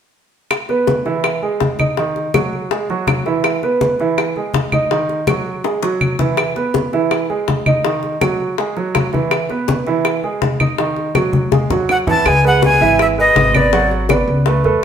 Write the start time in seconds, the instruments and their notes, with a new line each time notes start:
0.51 high bongo, high conga, claves
0.69 upright piano B3 B4, high bongo, high conga
0.87 high bongo, high conga
1.05 upright piano E3 E4, high bongo, high conga
1.24 high bongo, high conga, claves
1.42 upright piano G#3 G#4, high conga
1.60 high bongo, low bongo, high conga
1.79 upright piano D#4 D#5, high bongo, high conga, claves
1.97 upright piano D#3 D#4, high bongo, high conga
2.16 high bongo, high conga
2.34 upright piano F#3 F#4, high bongo, high conga, claves
2.53 high conga
2.71 upright piano G#3 G#4, high bongo, high conga
2.89 upright piano F#3 F#4, high bongo, high conga
3.07 high bongo, low bongo, high conga, claves
3.26 upright piano E3 E4, high bongo
3.44 high bongo, high conga, claves
3.63 upright piano B3 B4, high bongo, high conga
3.81 high bongo, high conga
3.99 upright piano E3 E4, high bongo, high conga
4.17 high bongo, high conga, claves
4.36 upright piano G#3 G#4, high conga
4.54 high bongo, low bongo, high conga
4.72 upright piano D#4 D#5, high bongo, high conga, claves
4.91 upright piano D#3 D#4, high bongo, high conga
5.09 high bongo, high conga
5.27 upright piano F#3 F#4, high bongo, high conga, claves
5.46 high conga
5.64 upright piano G#3 G#4, high bongo, high conga
5.82 upright piano F#3 F#4, low bongo, high conga
6.01 high conga, claves
6.19 upright piano E3 E4, low bongo, high conga
6.37 high bongo, high conga, claves
6.56 upright piano B3 B4, high bongo, high conga
6.74 high bongo, high conga
6.93 upright piano E3 E4, high bongo, high conga
7.11 high bongo, high conga, claves
7.30 upright piano G#3 G#4, high conga
7.48 high bongo, low bongo, high conga
7.66 upright piano D#4 D#5, high bongo, high conga, claves
7.84 upright piano D#3 D#4, high bongo, high conga
8.03 high bongo, high conga
8.21 upright piano F#3 F#4, high bongo, high conga, claves
8.40 high conga
8.58 upright piano G#3 G#4, high bongo, high conga
8.77 upright piano F#3 F#4, high bongo, high conga
8.95 high bongo, low bongo, high conga, claves
9.13 upright piano E3 E4, high bongo, high conga
9.31 high bongo, high conga, claves
9.50 upright piano B3 B4, high bongo, high conga
9.68 high bongo, high conga
9.87 upright piano E3 E4, high bongo, high conga
10.05 high bongo, high conga, claves
10.23 upright piano G#3 G#4, high conga
10.42 high bongo, low bongo, high conga
10.60 upright piano D#4 D#5, high bongo, high conga, claves
10.78 upright piano D#3 D#4, high bongo, high conga
10.96 high bongo, high conga
11.15 upright piano F#3 F#4, high bongo, high conga, claves
11.33 high conga
11.52 upright piano G#3 G#4, high bongo, high conga
11.70 upright piano F#3 F#4, high bongo, low conga
11.89 flute F#5, low bongo, claves
12.07 upright piano E3 E4, flute A5, low bongo, low conga
12.25 upright bass C#2, upright piano G#3 G#4 B4, flute G#5, high bongo, high conga, claves
12.44 upright piano G#3 G#4 B4, flute F#5, high bongo, high conga
12.62 flute G#5, high bongo, high conga
12.80 upright bass G#1, upright piano E3 E4 E5, high bongo, high conga
12.99 flute E5, high bongo, high conga, claves
13.18 upright piano G#3 G#4 B4, flute D#5, high conga
13.35 upright bass G#1, high bongo, low bongo, high conga
13.55 upright piano B3 B4 D5, flute D5, high bongo, high conga, claves
13.73 upright piano F#3 F#4 F#5, high bongo, high conga
13.91 high bongo, high conga
14.09 upright piano B3 B4 D5, high bongo, high conga, claves
14.27 upright bass C#2, high conga
14.46 upright piano A3 A4 B4, high bongo, high conga
14.64 upright bass E2, upright piano A3 A4 B4, high bongo, high conga